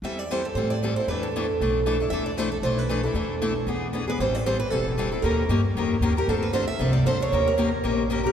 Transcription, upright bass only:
X:1
M:4/4
L:1/8
Q:"Swing" 1/4=231
K:Am
V:1 name="Upright bass" clef=bass
E,,4 A,,4 | E,,4 B,,,4 | E,,4 B,,,4 | E,,4 E,,4 |
A,,,4 E,,,4 | ^D,,2 G,,2 ^E,,2 D,,2 | D,,4 C,,2 D,,2 | ^D,,4 ^A,,,4 |]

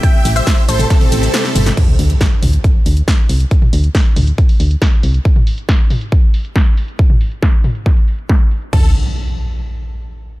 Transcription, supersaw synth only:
X:1
M:4/4
L:1/16
Q:1/4=138
K:Cmix
V:1 name="Supersaw synth"
[eg]3 [ce]3 [Ac]2 [CA]6- [CA] z | z16 | z16 | z16 |
z16 | A2 z12 z2 |]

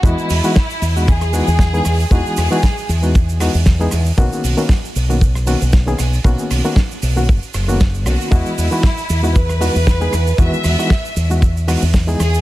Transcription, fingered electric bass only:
X:1
M:4/4
L:1/16
Q:"Swing 16ths" 1/4=116
K:Elyd
V:1 name="Fingered electric bass" clef=bass
E,, z E,, z3 E,,4 z E,,2 z E,, z | E,, z E,, z3 E,,4 z E,,2 z E,, z | B,,, z B,,, z3 B,,,4 z B,,,2 z B,,, z | B,,, z B,,, z3 B,,,2 F,,, z F,,,4 B,,, z |
E,, z E,, z3 E,,4 z E,,2 z E,, z | E,, z E,, z3 E,,4 z E,,2 z E,, z |]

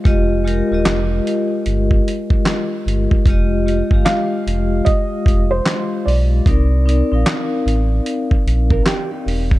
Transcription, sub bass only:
X:1
M:4/4
L:1/16
Q:"Swing 16ths" 1/4=75
K:Cphr
V:1 name="Sub bass" clef=bass
F,,,3 E,,, F,,,2 z2 G,,,2 z4 G,,, z | F,,,3 G,,, z2 F,,,2 z2 F,,,2 z2 =B,,,2 | C,,3 B,,, z2 =A,,,2 z2 B,,,2 z2 =E,,,2 |]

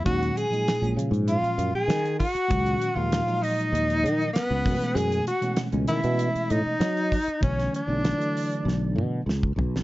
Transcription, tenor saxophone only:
X:1
M:4/4
L:1/16
Q:1/4=98
K:Ebm
V:1 name="Tenor saxophone"
G2 A4 z2 F3 A3 G2- | G3 F3 E6 C4 | A2 G2 z2 _F4 E6 | ^C2 =D8 z6 |]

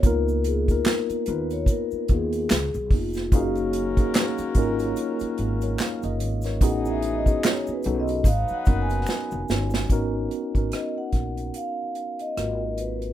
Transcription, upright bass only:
X:1
M:4/4
L:1/16
Q:"Swing 16ths" 1/4=73
K:G#dor
V:1 name="Upright bass" clef=bass
C,,4 z2 D,,2 z2 D,,2 C,, B,,, E,,,2 | F,,,4 z2 G,,,2 z2 G,,,2 z F,,, G,,,2 | =A,,,4 z2 B,,,2 G,,, z F,,,2 z E,,, =G,,,2 | G,,,2 z G,,, z2 A,,,2 z4 G,,,4 |]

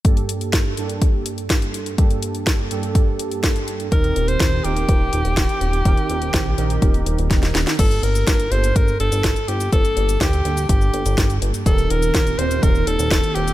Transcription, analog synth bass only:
X:1
M:4/4
L:1/16
Q:1/4=124
K:Gm
V:1 name="Analog synth bass" clef=bass
z16 | z16 | E,,,2 E,,,2 E,,,2 E,,,2 E,,,2 E,,, E,,, E,,, z E,,,2 | E,,, z E,,,2 B,,,2 B,,,2 E,,,2 E,,, E,,, E,,,2 E,,, z |
G,,,2 G,,,2 G,,,2 G,,,2 G,,,2 G,,, G,,, G,,, z G,,,2 | G,,, z G,,,2 D,,2 D,,2 G,,,2 G,,, G,,, G,,,2 G,,, z | E,,,2 E,,,2 E,,,2 E,,,2 E,,,2 E,,, E,,, E,,, z E,,,2 |]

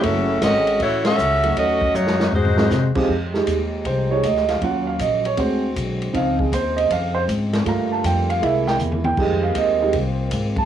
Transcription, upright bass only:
X:1
M:4/4
L:1/8
Q:"Swing" 1/4=158
K:F#dor
V:1 name="Upright bass" clef=bass
F,,,2 G,,,2 A,,,2 C,,2 | D,,2 F,,2 G,,2 ^B,, z | [K:Fm] F,,2 E,,2 C,,2 =D,,2 | E,,2 B,,,2 =D,,2 =B,,,2 |
D,,2 E,,2 F,,2 A,,2 | G,,2 F,,2 C,,2 =E,,2 | F,,2 E,,2 C,,2 A,,,2 |]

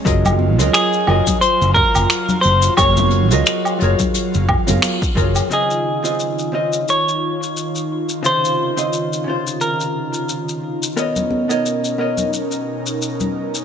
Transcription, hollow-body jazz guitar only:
X:1
M:4/4
L:1/16
Q:"Swing 16ths" 1/4=88
K:Db
V:1 name="Hollow-body jazz guitar"
[G,FABe]3 [G,FABe]3 [G,FABe]2 z8 | [G,FABd]3 [G,FABe]3 [G,FABd]4- [G,FABd] [G,FABf]2 z [G,FABd]2 | [D,CFe]3 [D,CFe]3 [D,CFe]2 z8 | [C,D,Fc]3 [D,CFe]3 [C,D,Fc]8- [C,D,Fc]2 |
[_CBde]3 [CBde]3 [CBde]2 z8 |]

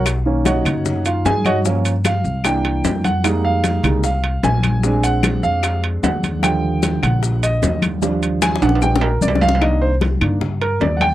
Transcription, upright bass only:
X:1
M:4/4
L:1/8
Q:1/4=151
K:Eb
V:1 name="Upright bass" clef=bass
_C,,3 ^F,,3 G,,2- | G,,3 C,,3 F,,2- | F,,3 C,,3 B,,,2- | B,,,3 F,,3 E,,2- |
E,,3 B,,,3 E,,2- | E,,3 B,,,3 C,,2- | [K:Cm] C,,3 G,,3 E,,2 |]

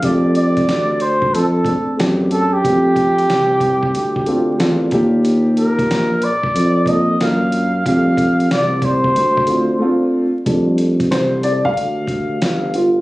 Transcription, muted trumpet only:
X:1
M:4/4
L:1/16
Q:"Swing 16ths" 1/4=92
K:Fmix
V:1 name="Muted trumpet"
d2 d4 c2 A4 z2 A G- | G12- G2 z2 | z2 B4 d4 e2 f4 | f4 d2 c8 z2 |
z16 |]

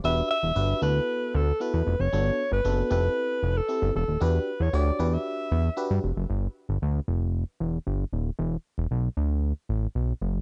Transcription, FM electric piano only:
X:1
M:4/4
L:1/8
Q:1/4=115
K:Em
V:1 name="FM electric piano"
[DFGB] z [DFGB] [B,EFA]2 z [B,EFA] z | [B,DFA] z [B,DFA] [CEGA]2 z [CEGA] z | [DFGB] z [DFG^c] [DFGB]2 z [DFGB] z | z8 |
z8 |]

